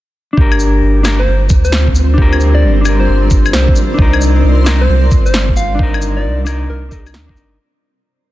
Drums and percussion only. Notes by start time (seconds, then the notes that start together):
0.37 kick
0.52 claves
0.60 shaker
1.05 snare, claves, shaker
1.50 kick, shaker
1.65 shaker
1.72 snare
1.88 kick
1.95 shaker
2.18 kick
2.33 claves
2.40 shaker
2.85 claves, shaker
3.31 kick, shaker
3.46 claves, shaker
3.53 snare
3.68 kick
3.76 shaker
3.99 kick
4.13 claves
4.21 shaker
4.66 snare, claves, shaker
5.11 kick, shaker
5.26 shaker
5.34 snare
5.49 kick
5.57 shaker
5.79 kick
5.94 claves
6.02 shaker
6.47 claves, shaker
6.92 kick, shaker
7.07 claves, shaker
7.14 snare
7.29 kick
7.36 shaker